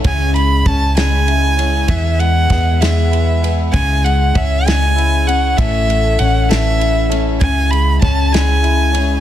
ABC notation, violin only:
X:1
M:6/8
L:1/8
Q:3/8=65
K:C#m
V:1 name="Violin"
g b a g3 | e f2 e2 z | g f e g2 f | e2 f e2 z |
g b a g3 |]